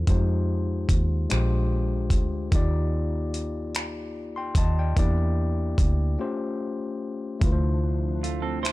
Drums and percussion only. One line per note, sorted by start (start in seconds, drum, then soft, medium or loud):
0.07 kick medium
0.07 closed hi-hat soft
0.89 kick medium
0.89 closed hi-hat medium
1.30 finger snap medium
1.30 closed hi-hat medium
2.10 kick medium
2.10 closed hi-hat medium
2.52 kick medium
2.52 closed hi-hat soft
3.34 closed hi-hat medium
3.75 finger snap loud
3.75 closed hi-hat medium
4.55 kick medium
4.55 closed hi-hat medium
4.97 kick medium
4.97 closed hi-hat medium
5.78 kick medium
5.78 closed hi-hat medium
7.41 kick medium
7.41 closed hi-hat soft
8.24 closed hi-hat medium
8.65 finger snap medium
8.65 closed hi-hat medium